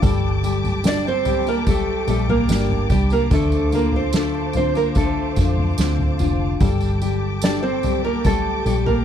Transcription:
Already playing: steel-string acoustic guitar C4 F4, string section A5 D6
0.01 fingered electric bass G1, grand piano G3, steel-string acoustic guitar G3 A4, string section G4 G5, kick, floor tom, tambourine
0.44 grand piano G3, steel-string acoustic guitar G4, tambourine
0.64 floor tom, tambourine
0.84 grand piano G3, nylon-string guitar D4, steel-string acoustic guitar A4, snare, tambourine
0.88 nylon-string guitar D5
1.07 nylon-string guitar C4 C5
1.25 grand piano G3, steel-string acoustic guitar G4, floor tom, tambourine
1.47 nylon-string guitar A#3 A#4, tambourine
1.66 grand piano G3, nylon-string guitar A3 A4, kick, floor tom, tambourine
2.07 fingered electric bass A#1, grand piano G3, nylon-string guitar A3 A4, steel-string acoustic guitar G4, tambourine
2.29 nylon-string guitar A#3 A#4, floor tom
2.48 fingered electric bass G1, grand piano G3, steel-string acoustic guitar D4, snare, tambourine
2.69 floor tom
2.89 fingered electric bass C2, grand piano G3, nylon-string guitar G3 G4, steel-string acoustic guitar G4, kick, floor tom, tambourine
3.10 nylon-string guitar A#3 A#4, tambourine
3.30 fingered electric bass D2, steel-string acoustic guitar D3 A4, grand piano D3, nylon-string guitar A3 A4, string section C5 F5, kick, floor tom, tambourine
3.52 tambourine
3.72 grand piano D3, nylon-string guitar A#3 A#4, steel-string acoustic guitar F4, tambourine
3.92 floor tom
3.96 nylon-string guitar C4 C5
4.13 grand piano D3, nylon-string guitar A3 A4, steel-string acoustic guitar A4, snare, tambourine
4.53 grand piano D3, nylon-string guitar C4 C5, steel-string acoustic guitar F4, floor tom, tambourine
4.75 nylon-string guitar A#3 A#4, tambourine
4.95 grand piano D3, nylon-string guitar A3 A4, steel-string acoustic guitar A4, kick, floor tom, tambourine
5.36 fingered electric bass F2, grand piano D3, steel-string acoustic guitar F4, kick, tambourine
5.58 floor tom
5.78 fingered electric bass D2, grand piano D3, steel-string acoustic guitar C4, snare, tambourine
5.99 floor tom
6.19 fingered electric bass F1, grand piano D3, steel-string acoustic guitar F4, floor tom, tambourine
6.60 fingered electric bass G1, steel-string acoustic guitar G3 A4, grand piano G3, string section G4 G5 A5 D6, kick, floor tom, tambourine
6.80 tambourine
7.01 grand piano G3, steel-string acoustic guitar G4, tambourine
7.42 grand piano G3, nylon-string guitar D4 D5, steel-string acoustic guitar A4, snare, tambourine
7.63 nylon-string guitar C4 C5
7.83 grand piano G3, steel-string acoustic guitar G4, floor tom, tambourine
8.05 nylon-string guitar A#3 A#4
8.24 grand piano G3, nylon-string guitar A3 A4, kick, floor tom, tambourine
8.66 fingered electric bass A#1, grand piano G3, nylon-string guitar A3 A4, steel-string acoustic guitar G4, tambourine
8.86 nylon-string guitar A#3 A#4, floor tom

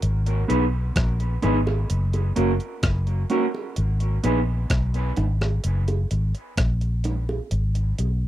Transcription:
0.02 fingered electric bass G#1, closed hi-hat
0.26 closed hi-hat
0.48 fingered electric bass B1, clean electric guitar B3 D#4 G#4 B4, closed hi-hat
0.96 fingered electric bass A#1, kick, cross-stick, closed hi-hat
1.20 closed hi-hat
1.42 fingered electric bass G#1, clean electric guitar B3 D#4 G#4 B4, closed hi-hat, low bongo
1.66 muted clean electric guitar stroke, high bongo
1.90 fingered electric bass F#1, closed hi-hat
2.13 closed hi-hat, high bongo
2.36 fingered electric bass F#1, clean electric guitar A#3 C#4 F#4 A#4, closed hi-hat
2.60 closed hi-hat
2.83 fingered electric bass F#1, kick, cross-stick, closed hi-hat
3.07 closed hi-hat
3.30 clean electric guitar A#3 C#4 F#4 A#4, closed hi-hat, low bongo
3.54 high bongo
3.76 fingered electric bass G#1, closed hi-hat
4.00 closed hi-hat
4.23 fingered electric bass A#1, clean electric guitar B3 D#4 G#4 B4, closed hi-hat
4.70 fingered electric bass B1, kick, cross-stick, closed hi-hat
4.94 closed hi-hat
5.17 fingered electric bass G#1, closed hi-hat, low bongo
5.41 cross-stick, high bongo
5.64 fingered electric bass F#1, closed hi-hat
5.88 closed hi-hat, high bongo
6.11 fingered electric bass G#1, closed hi-hat
6.35 closed hi-hat
6.57 fingered electric bass A#1, kick, cross-stick, closed hi-hat
6.81 closed hi-hat
7.04 closed hi-hat, low bongo
7.29 high bongo
7.51 fingered electric bass G#1, closed hi-hat
7.75 closed hi-hat
7.98 fingered electric bass B1, closed hi-hat

